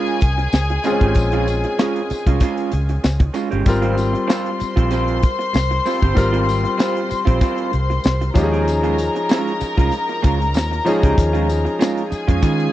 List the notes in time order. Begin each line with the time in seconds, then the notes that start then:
Already playing: G#3 C#4 F4 G#4 A#4 G#5
0.06 closed hi-hat
0.21 C2, muted clean electric guitar stroke, kick, closed hi-hat, tambourine
0.38 muted clean electric guitar stroke, closed hi-hat
0.53 C#2, muted clean electric guitar stroke, snare, tambourine
0.70 muted clean electric guitar stroke, closed hi-hat
0.84 G#3 C4 C#4 F4 G#4, closed hi-hat, tambourine
0.91 C#4
1.01 G#1 G#3 C#4 G4, kick, closed hi-hat
1.15 A#1, muted clean electric guitar stroke, kick, closed hi-hat, tambourine
1.32 G#3 C#4 F4, closed hi-hat
1.48 muted clean electric guitar stroke, closed hi-hat, tambourine
1.64 muted clean electric guitar stroke, closed hi-hat
1.79 G#3 C#4 F4, snare, tambourine
1.96 closed hi-hat
2.10 muted clean electric guitar stroke, muted fingered electric bass stroke, closed hi-hat, tambourine
2.27 C2 G#3 C#4 F4, kick, closed hi-hat
2.40 G#3 C#4 F4, kick, closed hi-hat, tambourine
2.57 closed hi-hat
2.72 C#2, muted clean electric guitar stroke, closed hi-hat
2.89 muted clean electric guitar stroke, closed hi-hat
3.04 C#2, muted clean electric guitar stroke, snare, tambourine
3.20 muted clean electric guitar stroke, kick, closed hi-hat
3.34 G#3 C#4 F4, closed hi-hat, tambourine
3.51 G1 G#3 C#4 G4, closed hi-hat
3.66 G#1 G3 C4 F4 A#4 C5 C6, muted clean electric guitar stroke, kick, closed hi-hat, tambourine
3.82 G3 C4 F4, closed hi-hat
3.96 muted clean electric guitar stroke, closed hi-hat, tambourine
4.13 muted clean electric guitar stroke, closed hi-hat
4.27 G3 C4 F4, snare, tambourine
4.46 closed hi-hat
4.59 muted clean electric guitar stroke, muted fingered electric bass stroke, closed hi-hat, tambourine
4.76 A#1 G3 C4 F4, kick, closed hi-hat
4.91 G3 C4 F4, closed hi-hat, tambourine
5.08 closed hi-hat
5.22 muted clean electric guitar stroke, kick, closed hi-hat, tambourine
5.39 muted clean electric guitar stroke, closed hi-hat
5.53 C2, muted clean electric guitar stroke, snare, tambourine
5.71 muted clean electric guitar stroke, closed hi-hat
5.85 G3 C4 F4, open hi-hat, tambourine
6.02 G1 G3 C4 G4, kick, closed hi-hat
6.15 G#1 G3 C4 F4 A#4, muted clean electric guitar stroke, kick, closed hi-hat, tambourine
6.32 G3 C4 F4, closed hi-hat
6.47 muted clean electric guitar stroke, closed hi-hat, tambourine
6.64 muted clean electric guitar stroke, closed hi-hat
6.78 G3 C4 F4, snare, tambourine
6.97 closed hi-hat
7.09 muted clean electric guitar stroke, muted fingered electric bass stroke, closed hi-hat, tambourine
7.25 A#1 G3 C4 F4, kick, closed hi-hat
7.41 G3 C4 F4, kick, closed hi-hat, tambourine
7.58 closed hi-hat
7.72 C2, muted clean electric guitar stroke, closed hi-hat
7.90 muted clean electric guitar stroke, closed hi-hat
8.04 C2, muted clean electric guitar stroke, snare, tambourine
8.21 muted clean electric guitar stroke, closed hi-hat
8.34 D#2 F3 G#3 C#4 D#4 F4 G4 A#4 A#5, kick, closed hi-hat, tambourine
8.43 G#4
8.52 G#3 C#4 G4, closed hi-hat
8.67 muted clean electric guitar stroke, closed hi-hat, tambourine
8.83 G#3 C#4 F4, closed hi-hat
8.98 muted clean electric guitar stroke, closed hi-hat, tambourine
9.15 muted clean electric guitar stroke, closed hi-hat
9.29 G#3 C#4 F4, snare, tambourine
9.48 closed hi-hat
9.60 muted clean electric guitar stroke, muted fingered electric bass stroke, closed hi-hat, tambourine
9.77 C2 G#3 C#4 F4, kick, closed hi-hat
9.92 closed hi-hat, tambourine
10.09 muted clean electric guitar stroke, closed hi-hat
10.22 C#2 G#3 C#4 F4, kick, closed hi-hat, tambourine
10.40 muted clean electric guitar stroke, closed hi-hat
10.54 D#2, muted clean electric guitar stroke, snare, tambourine
10.71 muted clean electric guitar stroke, closed hi-hat
10.85 F3 G#3 C#4 D#4 F4 G#4, closed hi-hat, tambourine
11.03 C#2 G#3 C#4 G4, kick, closed hi-hat
11.17 D#2, muted clean electric guitar stroke, kick, closed hi-hat, tambourine
11.33 G#3 C#4 F4, closed hi-hat
11.48 muted clean electric guitar stroke, closed hi-hat, tambourine
11.65 muted clean electric guitar stroke, closed hi-hat
11.79 G#3 C#4 F4, snare, tambourine
11.97 closed hi-hat
12.10 G#4 G#5, muted clean electric guitar stroke, muted fingered electric bass stroke, closed hi-hat, tambourine
12.27 F2 G#3 C#4 F4, kick, closed hi-hat
12.42 D#3 G#3 C#4 F4, kick, closed hi-hat, tambourine
12.60 closed hi-hat